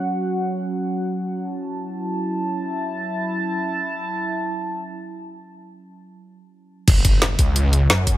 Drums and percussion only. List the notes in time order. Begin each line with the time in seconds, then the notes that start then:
6.88 kick, closed hi-hat, crash
7.05 kick, closed hi-hat
7.22 snare, closed hi-hat
7.39 kick, closed hi-hat
7.56 closed hi-hat
7.73 closed hi-hat
7.90 snare, closed hi-hat
8.07 kick, closed hi-hat